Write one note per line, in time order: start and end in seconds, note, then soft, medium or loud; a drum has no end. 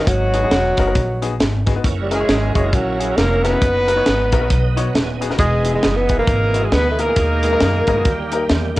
0.07 0.45 G#1 medium
0.07 0.75 G#2 medium
0.07 1.40 F#3 medium
0.07 1.36 B3 medium
0.07 1.36 D#4 medium
0.07 1.40 F#4 medium
0.07 kick loud
0.07 closed hi-hat loud
0.34 0.39 B3 medium
0.34 0.39 D#4 medium
0.34 0.39 F#4 medium
0.34 0.39 G#4 medium
0.34 closed hi-hat medium
0.43 0.54 B3 medium
0.43 0.54 D#4 medium
0.43 0.54 F#4 medium
0.43 0.54 G#4 medium
0.51 0.74 E1 medium
0.51 snare loud
0.51 closed hi-hat medium
0.77 0.93 F#1 medium
0.77 0.83 B3 medium
0.77 0.84 D#4 medium
0.77 0.84 F#4 medium
0.77 0.84 A#4 medium
0.77 kick medium
0.77 closed hi-hat medium
0.87 0.98 B3 medium
0.87 0.98 D#4 medium
0.87 0.98 F#4 medium
0.87 0.98 A#4 medium
0.95 1.41 A#1 medium
0.95 kick loud
0.95 closed hi-hat medium
1.22 1.32 B3 medium
1.22 1.33 D#4 medium
1.22 1.33 F#4 medium
1.22 1.33 G#4 medium
1.22 closed hi-hat medium
1.40 1.77 G#1 medium
1.40 snare loud
1.40 closed hi-hat medium
1.67 1.72 B3 medium
1.67 1.72 D#4 medium
1.67 1.72 F#4 medium
1.67 1.72 G#4 medium
1.67 kick medium
1.67 snare soft
1.67 closed hi-hat medium
1.76 1.84 B3 medium
1.76 1.85 D#4 medium
1.76 1.85 F#4 medium
1.76 1.85 B4 medium
1.84 2.22 F#1 medium
1.84 3.58 F#3 medium
1.84 3.59 C#4 medium
1.84 3.59 E4 medium
1.84 3.58 A#4 medium
1.84 kick loud
1.84 closed hi-hat medium
2.02 2.13 G3 medium
2.10 2.55 G#3 medium
2.10 2.16 C#4 medium
2.10 2.73 C#4 medium
2.10 2.16 E4 medium
2.10 2.96 E4 medium
2.10 2.16 F#4 medium
2.10 2.70 G#4 medium
2.10 2.16 A#4 medium
2.10 closed hi-hat medium
2.20 2.31 C#4 medium
2.20 2.31 E4 medium
2.20 2.31 F#4 soft
2.20 2.31 C#5 medium
2.29 2.51 G#1 medium
2.29 snare loud
2.29 closed hi-hat medium
2.55 2.70 F#1 medium
2.55 2.76 G#3 medium
2.55 2.60 C#4 medium
2.55 2.60 E4 medium
2.55 2.60 F#4 medium
2.55 2.61 C#5 medium
2.55 kick medium
2.55 closed hi-hat medium
2.63 2.75 C#4 medium
2.63 2.75 E4 medium
2.63 2.75 F#4 medium
2.63 2.75 G#4 medium
2.73 3.11 A#1 medium
2.73 3.18 F#3 medium
2.73 3.58 A#3 medium
2.73 3.58 C#4 medium
2.73 3.18 F#4 medium
2.73 kick loud
2.73 closed hi-hat medium
2.99 3.09 C#4 medium
2.99 3.10 E4 medium
2.99 3.10 F#4 medium
2.99 3.10 G#4 medium
2.99 closed hi-hat medium
3.17 3.55 F1 medium
3.17 3.45 A#3 medium
3.17 3.44 A#4 loud
3.17 snare loud
3.17 closed hi-hat medium
3.44 4.77 B3 medium
3.44 3.49 C#4 medium
3.44 4.73 D#4 medium
3.44 3.49 E4 medium
3.44 3.49 F#4 medium
3.44 3.49 A#4 medium
3.44 4.73 B4 loud
3.44 snare soft
3.44 closed hi-hat medium
3.53 3.62 C#4 medium
3.53 3.62 E4 medium
3.53 3.62 F#4 medium
3.53 3.62 G#4 medium
3.61 3.99 F#1 medium
3.61 5.35 F#3 medium
3.61 5.35 B3 medium
3.61 5.35 D#4 medium
3.61 5.36 B4 medium
3.61 kick loud
3.61 closed hi-hat medium
3.87 3.93 B3 medium
3.87 3.93 D#4 medium
3.87 3.93 F#4 medium
3.87 3.93 A#4 medium
3.87 closed hi-hat medium
3.96 4.08 B3 medium
3.96 4.08 D#4 medium
3.96 4.08 F#4 medium
3.96 4.08 C#5 medium
4.06 4.33 G#1 medium
4.06 snare medium
4.06 closed hi-hat medium
4.32 4.48 A#1 medium
4.32 4.38 B3 medium
4.32 4.38 D#4 medium
4.32 4.38 F#4 medium
4.32 4.38 A#4 loud
4.32 4.41 D#5 medium
4.32 kick medium
4.32 closed hi-hat medium
4.41 4.52 B3 medium
4.41 4.52 D#4 medium
4.41 4.52 F#4 medium
4.41 4.52 A#4 medium
4.41 4.51 C#5 medium
4.50 4.88 B1 medium
4.50 4.83 D#5 medium
4.50 kick loud
4.50 closed hi-hat medium
4.76 4.87 B3 medium
4.76 4.87 D#4 medium
4.76 4.87 F#4 medium
4.76 4.87 C#5 medium
4.76 closed hi-hat medium
4.87 4.95 F#5 medium
4.94 5.32 D#1 medium
4.94 5.20 G#5 medium
4.94 snare loud
4.94 closed hi-hat medium
5.21 5.26 B3 medium
5.21 5.26 D#4 medium
5.21 5.26 F#4 medium
5.21 5.27 G#4 medium
5.21 5.38 A#5 medium
5.21 closed hi-hat medium
5.30 5.39 B3 medium
5.30 5.39 D#4 medium
5.30 5.39 F#4 medium
5.30 5.39 A#4 medium
5.30 snare soft
5.37 5.77 E1 loud
5.37 7.13 B2 medium
5.37 7.13 E3 medium
5.37 6.06 E3 medium
5.37 5.72 G#3 loud
5.37 6.24 B3 medium
5.37 7.13 D#4 medium
5.37 6.18 D#4 medium
5.37 7.12 G#4 medium
5.37 5.72 G#4 medium
5.37 kick loud
5.37 closed hi-hat medium
5.65 5.70 B3 medium
5.65 5.70 D#4 medium
5.65 5.71 E4 medium
5.65 5.71 G#4 medium
5.65 closed hi-hat medium
5.73 5.98 G#3 medium
5.73 5.85 B3 medium
5.73 5.85 D#4 medium
5.73 5.85 E4 medium
5.73 5.95 G#4 medium
5.73 5.85 G#4 medium
5.83 6.21 F#1 medium
5.83 snare loud
5.83 closed hi-hat medium
5.96 6.18 B3 medium
5.96 6.19 B4 medium
6.09 6.15 B3 medium
6.09 6.15 D#4 medium
6.09 6.15 E4 medium
6.09 6.15 G#4 medium
6.09 kick medium
6.09 closed hi-hat medium
6.18 6.65 A#3 loud
6.18 6.30 B3 medium
6.18 6.30 D#4 medium
6.18 6.99 D#4 medium
6.18 6.30 E4 medium
6.18 6.63 A#4 loud
6.18 6.30 B4 medium
6.27 6.65 G#1 medium
6.27 kick loud
6.27 closed hi-hat medium
6.53 6.64 B3 medium
6.53 6.65 D#4 medium
6.53 6.65 E4 medium
6.53 6.65 F#4 medium
6.53 closed hi-hat medium
6.64 6.74 G#3 medium
6.64 6.73 G#4 medium
6.72 7.10 D2 medium
6.72 6.90 B3 medium
6.72 6.99 B4 loud
6.72 snare loud
6.72 closed hi-hat medium
6.91 7.01 A3 medium
6.98 8.77 A#3 medium
6.98 7.04 B3 medium
6.98 7.04 D#4 medium
6.98 8.74 D#4 medium
6.98 7.04 E4 medium
6.98 7.04 A#4 medium
6.98 8.78 A#4 loud
6.98 closed hi-hat medium
7.08 7.17 B3 medium
7.08 7.17 D#4 medium
7.08 7.17 E4 medium
7.08 7.17 G#4 medium
7.16 7.54 D#2 loud
7.16 8.04 B2 medium
7.16 8.04 D#3 medium
7.16 7.84 D#3 medium
7.16 8.04 G#3 medium
7.16 8.04 G#4 medium
7.16 kick loud
7.16 closed hi-hat medium
7.43 7.48 G#3 medium
7.43 7.48 B3 medium
7.43 7.49 D#4 medium
7.43 7.49 G#4 medium
7.43 closed hi-hat medium
7.51 7.63 G#3 medium
7.51 7.63 B3 medium
7.51 7.63 D#4 medium
7.51 7.64 A#4 medium
7.60 7.84 F#2 medium
7.60 snare loud
7.60 closed hi-hat medium
7.87 8.05 G#2 medium
7.87 7.93 G#3 medium
7.87 7.93 B3 medium
7.87 7.93 D#4 medium
7.87 7.93 A#4 medium
7.87 kick medium
7.87 closed hi-hat medium
7.97 8.06 G#3 medium
7.97 8.06 B3 medium
7.97 8.06 D#4 medium
7.97 8.06 F#4 medium
8.05 8.43 D#2 loud
8.05 8.73 D#3 medium
8.05 8.80 D#3 medium
8.05 8.80 G3 medium
8.05 8.80 A#3 medium
8.05 8.12 E4 medium
8.05 kick loud
8.05 closed hi-hat medium
8.11 8.80 G4 medium
8.32 8.43 A#3 medium
8.32 8.43 D#4 medium
8.32 8.43 G4 medium
8.32 8.43 A#4 medium
8.32 closed hi-hat medium
8.49 8.80 E2 medium
8.49 snare loud
8.49 closed hi-hat medium
8.76 8.80 A#3 medium
8.76 8.80 D#4 medium
8.76 snare soft
8.76 closed hi-hat medium